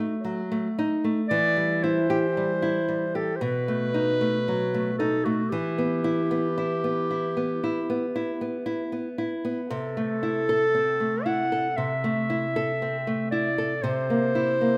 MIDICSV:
0, 0, Header, 1, 3, 480
1, 0, Start_track
1, 0, Key_signature, 1, "minor"
1, 0, Tempo, 1056338
1, 591, Time_signature, 4, 2, 24, 8
1, 3468, Tempo, 1032702
1, 6789, End_track
2, 0, Start_track
2, 0, Title_t, "Clarinet"
2, 0, Program_c, 0, 71
2, 0, Note_on_c, 0, 66, 91
2, 332, Note_off_c, 0, 66, 0
2, 585, Note_on_c, 0, 74, 109
2, 833, Note_on_c, 0, 72, 93
2, 840, Note_off_c, 0, 74, 0
2, 1434, Note_on_c, 0, 69, 84
2, 1441, Note_off_c, 0, 72, 0
2, 1527, Note_on_c, 0, 72, 67
2, 1534, Note_off_c, 0, 69, 0
2, 1553, Note_on_c, 0, 71, 112
2, 1560, Note_off_c, 0, 72, 0
2, 2262, Note_off_c, 0, 71, 0
2, 2265, Note_on_c, 0, 69, 96
2, 2384, Note_on_c, 0, 66, 85
2, 2390, Note_off_c, 0, 69, 0
2, 2498, Note_on_c, 0, 67, 96
2, 2504, Note_off_c, 0, 66, 0
2, 4181, Note_off_c, 0, 67, 0
2, 4427, Note_on_c, 0, 69, 107
2, 5150, Note_on_c, 0, 78, 104
2, 5157, Note_off_c, 0, 69, 0
2, 5390, Note_on_c, 0, 76, 88
2, 5397, Note_off_c, 0, 78, 0
2, 6104, Note_off_c, 0, 76, 0
2, 6107, Note_on_c, 0, 74, 90
2, 6346, Note_on_c, 0, 72, 103
2, 6353, Note_off_c, 0, 74, 0
2, 6789, Note_off_c, 0, 72, 0
2, 6789, End_track
3, 0, Start_track
3, 0, Title_t, "Nylon-string guitar"
3, 0, Program_c, 1, 24
3, 0, Note_on_c, 1, 57, 55
3, 0, Note_on_c, 1, 63, 59
3, 63, Note_off_c, 1, 63, 0
3, 111, Note_on_c, 1, 54, 55
3, 185, Note_off_c, 1, 57, 0
3, 234, Note_on_c, 1, 57, 60
3, 304, Note_off_c, 1, 54, 0
3, 357, Note_on_c, 1, 63, 65
3, 425, Note_off_c, 1, 57, 0
3, 474, Note_on_c, 1, 57, 57
3, 546, Note_off_c, 1, 63, 0
3, 592, Note_off_c, 1, 57, 0
3, 595, Note_on_c, 1, 52, 77
3, 712, Note_on_c, 1, 55, 55
3, 834, Note_on_c, 1, 64, 65
3, 904, Note_off_c, 1, 55, 0
3, 954, Note_on_c, 1, 67, 65
3, 1025, Note_off_c, 1, 64, 0
3, 1077, Note_on_c, 1, 55, 61
3, 1144, Note_off_c, 1, 67, 0
3, 1192, Note_on_c, 1, 64, 57
3, 1266, Note_off_c, 1, 55, 0
3, 1311, Note_on_c, 1, 55, 58
3, 1383, Note_off_c, 1, 64, 0
3, 1432, Note_on_c, 1, 67, 52
3, 1502, Note_off_c, 1, 55, 0
3, 1534, Note_off_c, 1, 52, 0
3, 1550, Note_on_c, 1, 47, 72
3, 1551, Note_off_c, 1, 67, 0
3, 1673, Note_on_c, 1, 57, 56
3, 1792, Note_on_c, 1, 63, 59
3, 1864, Note_off_c, 1, 57, 0
3, 1913, Note_on_c, 1, 57, 62
3, 1984, Note_off_c, 1, 63, 0
3, 2036, Note_on_c, 1, 54, 53
3, 2104, Note_off_c, 1, 57, 0
3, 2155, Note_on_c, 1, 57, 63
3, 2224, Note_off_c, 1, 54, 0
3, 2271, Note_on_c, 1, 63, 66
3, 2343, Note_off_c, 1, 57, 0
3, 2388, Note_on_c, 1, 57, 58
3, 2460, Note_off_c, 1, 63, 0
3, 2489, Note_off_c, 1, 47, 0
3, 2507, Note_off_c, 1, 57, 0
3, 2509, Note_on_c, 1, 52, 75
3, 2628, Note_on_c, 1, 59, 58
3, 2746, Note_on_c, 1, 64, 68
3, 2820, Note_off_c, 1, 59, 0
3, 2867, Note_on_c, 1, 59, 62
3, 2940, Note_off_c, 1, 64, 0
3, 2988, Note_on_c, 1, 64, 64
3, 3061, Note_off_c, 1, 59, 0
3, 3108, Note_on_c, 1, 59, 55
3, 3182, Note_off_c, 1, 64, 0
3, 3229, Note_on_c, 1, 64, 55
3, 3302, Note_off_c, 1, 59, 0
3, 3348, Note_on_c, 1, 59, 52
3, 3421, Note_off_c, 1, 64, 0
3, 3453, Note_off_c, 1, 52, 0
3, 3469, Note_on_c, 1, 64, 58
3, 3541, Note_off_c, 1, 59, 0
3, 3591, Note_on_c, 1, 59, 53
3, 3662, Note_off_c, 1, 64, 0
3, 3711, Note_on_c, 1, 64, 57
3, 3781, Note_off_c, 1, 59, 0
3, 3831, Note_on_c, 1, 59, 58
3, 3900, Note_off_c, 1, 64, 0
3, 3945, Note_on_c, 1, 64, 54
3, 4019, Note_off_c, 1, 59, 0
3, 4068, Note_on_c, 1, 59, 52
3, 4137, Note_off_c, 1, 64, 0
3, 4189, Note_on_c, 1, 64, 62
3, 4259, Note_off_c, 1, 59, 0
3, 4311, Note_on_c, 1, 59, 60
3, 4381, Note_off_c, 1, 64, 0
3, 4431, Note_off_c, 1, 59, 0
3, 4431, Note_on_c, 1, 48, 78
3, 4554, Note_on_c, 1, 57, 54
3, 4674, Note_on_c, 1, 64, 64
3, 4747, Note_off_c, 1, 57, 0
3, 4797, Note_on_c, 1, 69, 62
3, 4866, Note_off_c, 1, 64, 0
3, 4915, Note_on_c, 1, 60, 60
3, 4987, Note_off_c, 1, 69, 0
3, 5034, Note_on_c, 1, 57, 51
3, 5105, Note_off_c, 1, 60, 0
3, 5153, Note_on_c, 1, 64, 52
3, 5225, Note_off_c, 1, 57, 0
3, 5275, Note_on_c, 1, 69, 56
3, 5344, Note_off_c, 1, 64, 0
3, 5375, Note_off_c, 1, 48, 0
3, 5394, Note_on_c, 1, 48, 58
3, 5465, Note_off_c, 1, 69, 0
3, 5517, Note_on_c, 1, 57, 57
3, 5636, Note_on_c, 1, 64, 55
3, 5706, Note_off_c, 1, 57, 0
3, 5759, Note_on_c, 1, 69, 59
3, 5825, Note_off_c, 1, 64, 0
3, 5879, Note_on_c, 1, 60, 50
3, 5946, Note_off_c, 1, 69, 0
3, 5996, Note_on_c, 1, 57, 54
3, 6067, Note_off_c, 1, 60, 0
3, 6112, Note_on_c, 1, 64, 53
3, 6185, Note_off_c, 1, 57, 0
3, 6234, Note_on_c, 1, 69, 55
3, 6303, Note_off_c, 1, 64, 0
3, 6333, Note_off_c, 1, 48, 0
3, 6351, Note_on_c, 1, 48, 71
3, 6352, Note_off_c, 1, 69, 0
3, 6474, Note_on_c, 1, 58, 49
3, 6591, Note_on_c, 1, 64, 64
3, 6663, Note_off_c, 1, 58, 0
3, 6712, Note_on_c, 1, 58, 50
3, 6783, Note_off_c, 1, 64, 0
3, 6789, Note_off_c, 1, 48, 0
3, 6789, Note_off_c, 1, 58, 0
3, 6789, End_track
0, 0, End_of_file